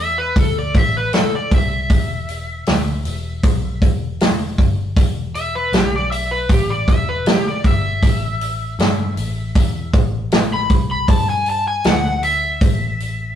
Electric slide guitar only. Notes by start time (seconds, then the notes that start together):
0.00 E5
0.18 B4
0.39 A4
0.59 D5
0.78 E5
0.97 B4
1.14 A4
1.35 D5
1.54 E5
5.35 E5
5.55 B4
5.74 G4
5.96 D5
6.12 E5
6.31 B4
6.52 G4
6.70 D5
6.90 E5
7.09 B4
7.29 G4
7.47 D5
7.67 E5
10.53 B5
10.91 B5
11.10 A5
11.30 G#5
11.50 A5
11.68 G#5
11.87 F#5
12.24 E5